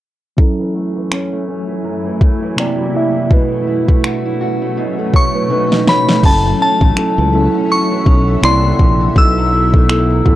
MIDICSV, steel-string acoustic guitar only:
0, 0, Header, 1, 2, 480
1, 0, Start_track
1, 0, Key_signature, 3, "minor"
1, 0, Tempo, 731707
1, 249, Time_signature, 4, 2, 24, 8
1, 6793, End_track
2, 0, Start_track
2, 0, Title_t, "Steel-string acoustic guitar"
2, 0, Program_c, 0, 25
2, 249, Note_on_c, 0, 42, 80
2, 390, Note_on_c, 0, 52, 57
2, 489, Note_on_c, 0, 57, 54
2, 627, Note_off_c, 0, 52, 0
2, 630, Note_on_c, 0, 52, 54
2, 733, Note_on_c, 0, 61, 66
2, 862, Note_off_c, 0, 57, 0
2, 870, Note_on_c, 0, 57, 55
2, 962, Note_off_c, 0, 61, 0
2, 970, Note_on_c, 0, 61, 66
2, 1106, Note_off_c, 0, 52, 0
2, 1108, Note_on_c, 0, 52, 54
2, 1200, Note_off_c, 0, 42, 0
2, 1208, Note_on_c, 0, 42, 73
2, 1345, Note_off_c, 0, 52, 0
2, 1348, Note_on_c, 0, 52, 55
2, 1440, Note_off_c, 0, 57, 0
2, 1448, Note_on_c, 0, 57, 55
2, 1586, Note_off_c, 0, 52, 0
2, 1589, Note_on_c, 0, 52, 56
2, 1689, Note_on_c, 0, 48, 80
2, 1744, Note_off_c, 0, 57, 0
2, 1745, Note_off_c, 0, 42, 0
2, 1745, Note_off_c, 0, 61, 0
2, 1830, Note_on_c, 0, 58, 60
2, 1849, Note_off_c, 0, 52, 0
2, 1931, Note_on_c, 0, 62, 60
2, 2068, Note_on_c, 0, 52, 55
2, 2166, Note_off_c, 0, 48, 0
2, 2169, Note_on_c, 0, 47, 79
2, 2226, Note_off_c, 0, 58, 0
2, 2226, Note_off_c, 0, 62, 0
2, 2308, Note_on_c, 0, 57, 57
2, 2409, Note_on_c, 0, 64, 59
2, 2546, Note_off_c, 0, 57, 0
2, 2549, Note_on_c, 0, 57, 51
2, 2651, Note_on_c, 0, 66, 66
2, 2670, Note_off_c, 0, 52, 0
2, 2783, Note_off_c, 0, 64, 0
2, 2790, Note_on_c, 0, 64, 58
2, 2889, Note_off_c, 0, 66, 0
2, 2891, Note_on_c, 0, 66, 64
2, 3027, Note_off_c, 0, 57, 0
2, 3029, Note_on_c, 0, 57, 58
2, 3122, Note_off_c, 0, 47, 0
2, 3130, Note_on_c, 0, 47, 78
2, 3269, Note_off_c, 0, 57, 0
2, 3271, Note_on_c, 0, 57, 54
2, 3362, Note_off_c, 0, 64, 0
2, 3370, Note_on_c, 0, 64, 55
2, 3507, Note_off_c, 0, 57, 0
2, 3510, Note_on_c, 0, 57, 54
2, 3601, Note_off_c, 0, 47, 0
2, 3609, Note_on_c, 0, 47, 80
2, 3666, Note_off_c, 0, 64, 0
2, 3748, Note_on_c, 0, 63, 58
2, 3768, Note_off_c, 0, 57, 0
2, 3845, Note_off_c, 0, 66, 0
2, 3847, Note_on_c, 0, 66, 58
2, 3986, Note_on_c, 0, 57, 57
2, 4089, Note_on_c, 0, 42, 81
2, 4145, Note_off_c, 0, 47, 0
2, 4145, Note_off_c, 0, 63, 0
2, 4228, Note_on_c, 0, 52, 58
2, 4248, Note_off_c, 0, 66, 0
2, 4329, Note_on_c, 0, 61, 66
2, 4465, Note_off_c, 0, 57, 0
2, 4468, Note_on_c, 0, 57, 56
2, 4561, Note_off_c, 0, 61, 0
2, 4569, Note_on_c, 0, 61, 66
2, 4705, Note_off_c, 0, 52, 0
2, 4708, Note_on_c, 0, 52, 57
2, 4799, Note_off_c, 0, 57, 0
2, 4807, Note_on_c, 0, 57, 60
2, 4939, Note_off_c, 0, 61, 0
2, 4947, Note_on_c, 0, 61, 64
2, 5040, Note_off_c, 0, 42, 0
2, 5048, Note_on_c, 0, 42, 78
2, 5184, Note_off_c, 0, 52, 0
2, 5187, Note_on_c, 0, 52, 57
2, 5279, Note_off_c, 0, 61, 0
2, 5287, Note_on_c, 0, 61, 62
2, 5418, Note_off_c, 0, 57, 0
2, 5426, Note_on_c, 0, 57, 59
2, 5526, Note_on_c, 0, 48, 79
2, 5584, Note_off_c, 0, 57, 0
2, 5584, Note_off_c, 0, 61, 0
2, 5585, Note_off_c, 0, 42, 0
2, 5664, Note_off_c, 0, 52, 0
2, 5667, Note_on_c, 0, 52, 59
2, 5766, Note_on_c, 0, 58, 55
2, 5907, Note_on_c, 0, 62, 64
2, 6006, Note_off_c, 0, 48, 0
2, 6008, Note_on_c, 0, 47, 78
2, 6064, Note_off_c, 0, 58, 0
2, 6064, Note_off_c, 0, 62, 0
2, 6147, Note_off_c, 0, 52, 0
2, 6149, Note_on_c, 0, 54, 59
2, 6248, Note_on_c, 0, 64, 64
2, 6389, Note_on_c, 0, 57, 57
2, 6481, Note_off_c, 0, 64, 0
2, 6489, Note_on_c, 0, 64, 68
2, 6625, Note_off_c, 0, 54, 0
2, 6628, Note_on_c, 0, 54, 55
2, 6720, Note_off_c, 0, 57, 0
2, 6728, Note_on_c, 0, 57, 64
2, 6793, Note_off_c, 0, 47, 0
2, 6793, Note_off_c, 0, 54, 0
2, 6793, Note_off_c, 0, 57, 0
2, 6793, Note_off_c, 0, 64, 0
2, 6793, End_track
0, 0, End_of_file